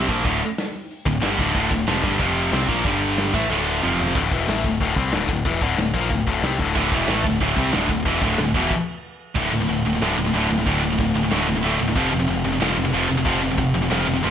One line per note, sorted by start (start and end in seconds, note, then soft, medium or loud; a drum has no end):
0.08 0.24 A#1 loud
0.08 0.24 A#2 medium
0.08 0.24 F3 medium
0.08 0.25 A#3 loud
0.08 kick medium
0.24 0.40 D1 medium
0.24 0.40 D2 loud
0.24 0.41 A2 loud
0.24 0.41 D3 loud
0.24 kick loud
0.24 open hi-hat medium
0.58 snare loud
0.58 open hi-hat medium
0.91 open hi-hat medium
1.06 1.21 D1 medium
1.06 1.19 D2 medium
1.06 1.20 A2 medium
1.06 kick medium
1.21 1.38 G1 loud
1.21 1.37 G2 loud
1.21 1.38 D3 loud
1.21 1.39 G3 loud
1.21 snare loud
1.21 open hi-hat medium
1.37 1.54 D1 medium
1.37 1.52 D2 medium
1.37 1.53 A2 loud
1.37 1.54 D3 loud
1.37 kick medium
1.54 1.70 D1 loud
1.54 1.70 D2 loud
1.54 1.71 A2 loud
1.54 1.71 D3 loud
1.54 kick loud
1.54 open hi-hat medium
1.71 1.86 D1 medium
1.71 1.84 D2 medium
1.71 1.85 A2 medium
1.71 kick loud
1.87 2.03 F1 medium
1.87 2.02 F2 medium
1.87 2.03 C3 loud
1.87 2.04 F3 loud
1.87 snare loud
1.87 open hi-hat medium
2.03 2.19 G1 loud
2.03 2.19 G2 medium
2.03 2.20 D3 medium
2.03 2.20 G3 medium
2.03 kick loud
2.19 2.50 F1 medium
2.19 2.52 F2 medium
2.19 2.51 C3 loud
2.19 2.53 F3 loud
2.19 kick medium
2.19 open hi-hat soft
2.52 2.68 C2 loud
2.52 2.67 C3 medium
2.52 2.68 G3 medium
2.52 2.68 C4 loud
2.52 snare loud
2.52 open hi-hat medium
2.67 2.84 A#1 medium
2.67 2.84 A#2 medium
2.67 2.84 F3 medium
2.67 2.85 A#3 loud
2.67 kick medium
2.85 3.31 G1 medium
2.85 3.33 G2 medium
2.85 3.34 D3 loud
2.85 3.34 G3 loud
2.85 kick loud
2.85 open hi-hat soft
3.17 snare loud
3.17 open hi-hat medium
3.33 3.49 A1 medium
3.33 3.48 A2 medium
3.33 3.49 E3 medium
3.33 3.50 A3 medium
3.33 kick loud
3.49 3.81 D1 medium
3.49 3.82 D2 loud
3.49 3.82 A2 medium
3.49 3.83 D3 loud
3.49 snare medium
3.83 4.14 F1 loud
3.83 4.14 F2 medium
3.83 4.15 C3 medium
3.83 4.16 F3 medium
3.83 mid tom loud
3.99 floor tom medium
4.15 4.31 D1 loud
4.15 4.30 D2 loud
4.15 4.31 A2 loud
4.15 4.32 D3 loud
4.15 kick loud
4.15 crash loud
4.15 crash medium
4.31 4.47 E1 medium
4.31 4.47 E2 medium
4.31 4.48 B2 medium
4.31 4.47 E3 medium
4.31 kick loud
4.31 crash medium
4.47 4.63 A1 loud
4.47 4.63 A2 medium
4.47 4.64 E3 medium
4.47 4.64 A3 loud
4.47 snare loud
4.47 crash medium
4.64 4.80 D1 medium
4.64 4.77 D2 medium
4.64 4.78 A2 medium
4.64 kick loud
4.64 crash medium
4.80 4.96 D1 loud
4.80 4.96 D2 loud
4.80 4.97 A2 loud
4.80 4.97 D3 loud
4.80 kick loud
4.80 crash medium
4.96 5.12 C2 loud
4.96 5.12 C3 medium
4.96 5.13 G3 medium
4.96 5.13 C4 medium
4.96 kick medium
4.96 crash medium
5.12 5.28 D1 loud
5.12 5.28 D2 loud
5.12 5.28 A2 loud
5.12 5.29 D3 loud
5.12 snare loud
5.12 crash medium
5.28 5.44 D1 medium
5.28 5.43 D2 medium
5.28 5.42 A2 medium
5.28 kick medium
5.28 snare soft
5.28 crash medium
5.45 5.61 E1 medium
5.45 5.61 E2 medium
5.45 5.61 B2 loud
5.45 5.62 E3 loud
5.45 kick loud
5.45 crash medium
5.61 5.77 D1 medium
5.61 5.78 D2 medium
5.61 5.78 A2 medium
5.61 5.78 D3 loud
5.61 kick loud
5.61 crash medium
5.78 5.93 D1 medium
5.78 5.92 D2 medium
5.78 5.92 A2 medium
5.78 snare loud
5.78 crash medium
5.93 6.10 A#1 loud
5.93 6.10 A#2 loud
5.93 6.10 F3 medium
5.93 6.11 A#3 loud
5.93 kick loud
5.93 crash medium
6.10 6.26 D1 medium
6.10 6.24 D2 medium
6.10 6.24 A2 medium
6.10 kick medium
6.10 crash medium
6.27 6.42 D1 medium
6.27 6.42 D2 medium
6.27 6.43 A2 medium
6.27 6.43 D3 loud
6.27 kick medium
6.27 crash medium
6.43 6.58 C2 loud
6.43 6.58 C3 loud
6.43 6.59 G3 loud
6.43 6.60 C4 loud
6.43 snare loud
6.43 crash loud
6.59 6.75 D1 loud
6.59 6.75 D2 medium
6.59 6.75 A2 loud
6.59 6.76 D3 loud
6.59 kick loud
6.59 crash medium
6.75 6.91 D1 loud
6.75 6.92 D2 loud
6.75 6.92 A2 loud
6.75 6.93 D3 loud
6.75 kick loud
6.75 crash loud
6.92 7.07 E1 medium
6.92 7.08 E2 medium
6.92 7.08 B2 medium
6.92 7.08 E3 loud
6.92 kick loud
6.92 crash medium
7.07 7.24 A1 loud
7.07 7.24 A2 loud
7.07 7.25 E3 medium
7.07 7.25 A3 loud
7.07 snare loud
7.07 crash medium
7.24 7.40 D1 medium
7.24 7.38 D2 medium
7.24 7.38 A2 medium
7.24 kick loud
7.24 crash medium
7.40 7.56 D1 loud
7.40 7.57 D2 loud
7.40 7.57 A2 loud
7.40 7.58 D3 loud
7.40 kick medium
7.40 crash medium
7.56 7.72 C2 loud
7.56 7.73 C3 medium
7.56 7.74 G3 medium
7.56 7.74 C4 loud
7.56 kick medium
7.56 crash medium
7.72 7.88 D1 loud
7.72 7.89 D2 loud
7.72 7.89 A2 loud
7.72 7.90 D3 loud
7.72 snare loud
7.72 crash medium
7.88 8.05 D1 medium
7.88 8.03 D2 medium
7.88 8.03 A2 medium
7.88 kick medium
7.88 snare soft
7.88 crash soft
8.05 8.21 E1 medium
8.05 8.21 E2 medium
8.05 8.22 B2 medium
8.05 8.22 E3 loud
8.05 kick loud
8.05 crash medium
8.21 8.37 D1 medium
8.21 8.38 D2 medium
8.21 8.38 A2 loud
8.21 8.39 D3 loud
8.21 kick loud
8.21 crash medium
8.38 8.54 D1 medium
8.38 8.52 D2 medium
8.38 8.52 A2 medium
8.38 snare loud
8.38 crash medium
8.54 8.70 E1 medium
8.54 8.71 E2 medium
8.54 8.71 B2 medium
8.54 8.72 E3 loud
8.54 kick loud
8.54 crash medium
8.71 kick loud
8.71 crash loud
9.36 9.51 D1 loud
9.36 9.52 D2 medium
9.36 9.52 A2 loud
9.36 9.52 D3 loud
9.36 kick loud
9.36 crash loud
9.36 crash medium
9.52 9.67 D1 medium
9.52 9.60 D2 medium
9.52 9.60 A2 medium
9.52 crash medium
9.61 9.68 D2 medium
9.61 9.69 A2 medium
9.68 9.83 D1 loud
9.68 9.84 D2 medium
9.68 9.84 A2 loud
9.68 crash medium
9.85 10.00 D1 medium
9.85 9.94 D2 medium
9.85 9.94 A2 medium
9.85 crash medium
9.95 10.01 D2 medium
9.95 10.02 A2 medium
10.01 10.16 D1 medium
10.01 10.17 D2 loud
10.01 10.17 A2 loud
10.01 10.18 D3 loud
10.01 snare medium
10.01 crash medium
10.17 10.32 D1 medium
10.17 10.26 D2 medium
10.17 10.25 A2 medium
10.17 crash medium
10.26 10.33 D2 medium
10.26 10.34 A2 medium
10.34 10.48 D1 medium
10.34 10.49 D2 loud
10.34 10.50 A2 loud
10.34 10.50 D3 loud
10.34 crash medium
10.50 10.65 D1 loud
10.50 10.58 D2 medium
10.50 10.58 A2 medium
10.50 crash medium
10.59 10.66 D2 medium
10.59 10.66 A2 medium
10.66 10.96 D1 loud
10.66 10.82 D2 loud
10.66 10.82 A2 medium
10.66 10.83 D3 loud
10.66 kick loud
10.66 crash medium
10.83 10.91 D2 medium
10.83 10.91 A2 medium
10.83 crash medium
10.92 10.99 D2 medium
10.92 10.99 A2 medium
10.99 11.13 D1 medium
10.99 11.14 D2 medium
10.99 11.14 A2 loud
10.99 kick loud
10.99 crash medium
11.15 11.30 D1 loud
11.15 11.23 D2 medium
11.15 11.23 A2 medium
11.15 crash medium
11.24 11.31 D2 medium
11.24 11.31 A2 medium
11.31 11.46 D1 medium
11.31 11.47 D2 medium
11.31 11.47 A2 medium
11.31 11.48 D3 loud
11.31 snare loud
11.31 crash medium
11.47 11.62 D1 loud
11.47 11.55 D2 medium
11.47 11.55 A2 medium
11.47 crash medium
11.56 11.63 D2 medium
11.56 11.63 A2 medium
11.63 11.78 D1 loud
11.63 11.79 D2 loud
11.63 11.79 A2 loud
11.63 11.80 D3 loud
11.63 crash loud
11.79 11.95 D1 medium
11.79 11.87 D2 medium
11.79 11.87 A2 medium
11.79 snare soft
11.79 crash medium
11.88 11.95 D2 medium
11.88 11.96 A2 medium
11.95 12.11 F1 loud
11.95 12.11 F2 medium
11.95 12.10 C3 loud
11.95 12.12 F3 loud
11.95 kick loud
11.95 crash medium
12.11 12.27 F1 medium
12.11 12.19 F2 medium
12.11 12.18 C3 medium
12.11 crash medium
12.20 12.26 F2 medium
12.20 12.27 C3 medium
12.27 12.43 F1 loud
12.27 12.43 F2 medium
12.27 12.43 C3 medium
12.27 crash medium
12.45 12.60 F1 loud
12.45 12.52 F2 medium
12.45 12.51 C3 loud
12.45 crash medium
12.52 12.59 F2 medium
12.52 12.60 C3 loud
12.61 12.76 F1 medium
12.61 12.76 F2 loud
12.61 12.76 C3 loud
12.61 12.77 F3 loud
12.61 snare loud
12.61 crash medium
12.77 12.92 F1 medium
12.77 12.84 F2 medium
12.77 12.84 C3 medium
12.77 snare soft
12.77 crash medium
12.85 12.91 F2 medium
12.85 12.92 C3 medium
12.92 13.08 F1 loud
12.92 13.08 F2 loud
12.92 13.08 C3 medium
12.92 13.09 F3 loud
12.92 crash medium
13.09 13.25 F1 medium
13.09 13.17 F2 medium
13.09 13.16 C3 medium
13.09 crash medium
13.17 13.23 F2 medium
13.17 13.24 C3 medium
13.25 13.55 F1 loud
13.25 13.41 F2 medium
13.25 13.40 C3 loud
13.25 13.41 F3 loud
13.25 kick loud
13.25 crash medium
13.41 13.50 F2 medium
13.41 13.49 C3 medium
13.41 crash medium
13.51 13.57 F2 medium
13.51 13.57 C3 medium
13.58 13.73 F1 medium
13.58 13.73 F2 medium
13.58 13.73 C3 medium
13.58 kick medium
13.58 crash medium
13.74 13.89 F1 loud
13.74 13.81 F2 medium
13.74 13.81 C3 medium
13.74 crash medium
13.82 13.89 F2 medium
13.82 13.89 C3 medium
13.90 14.05 F1 medium
13.90 14.06 F2 loud
13.90 14.05 C3 loud
13.90 14.07 F3 loud
13.90 snare loud
13.90 crash medium
14.06 14.22 F1 medium
14.06 14.13 F2 medium
14.06 14.13 C3 medium
14.06 crash medium
14.14 14.21 F2 medium
14.14 14.22 C3 medium
14.23 14.30 F1 medium
14.23 14.30 F2 medium
14.23 14.30 C3 loud
14.23 14.30 F3 loud
14.23 crash medium